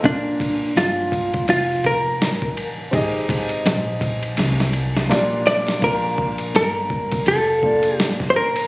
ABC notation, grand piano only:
X:1
M:4/4
L:1/8
Q:"Swing 16ths" 1/4=83
K:Bb
V:1 name="Grand piano"
[B,DFBd]8 | [CEG_Ae]6 [B,DFGd]2 | [B,DFd]4- [B,DFd] [B,DFd]3 |]